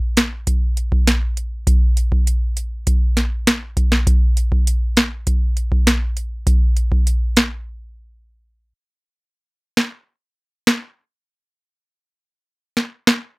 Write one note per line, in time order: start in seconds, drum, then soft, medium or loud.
0.17 snare loud
0.17 closed hi-hat medium
0.47 kick medium
0.47 closed hi-hat medium
0.77 closed hi-hat medium
0.92 kick loud
1.07 snare loud
1.07 closed hi-hat medium
1.37 closed hi-hat medium
1.67 kick loud
1.67 closed hi-hat medium
1.97 closed hi-hat medium
2.12 kick medium
2.27 closed hi-hat medium
2.57 closed hi-hat medium
2.87 kick medium
2.87 closed hi-hat medium
3.17 snare medium
3.17 closed hi-hat medium
3.47 snare loud
3.47 closed hi-hat medium
3.77 kick medium
3.77 closed hi-hat medium
3.92 snare medium
4.07 kick loud
4.07 closed hi-hat medium
4.37 closed hi-hat medium
4.52 kick medium
4.67 closed hi-hat medium
4.97 snare loud
4.97 closed hi-hat medium
5.27 kick medium
5.27 closed hi-hat medium
5.57 closed hi-hat medium
5.72 kick medium
5.87 snare loud
5.87 closed hi-hat medium
6.17 closed hi-hat medium
6.47 kick loud
6.47 closed hi-hat medium
6.77 closed hi-hat medium
6.92 kick medium
7.07 closed hi-hat medium
7.37 snare loud
7.37 closed hi-hat medium
9.77 snare loud
10.67 snare loud
12.77 snare medium
13.07 snare loud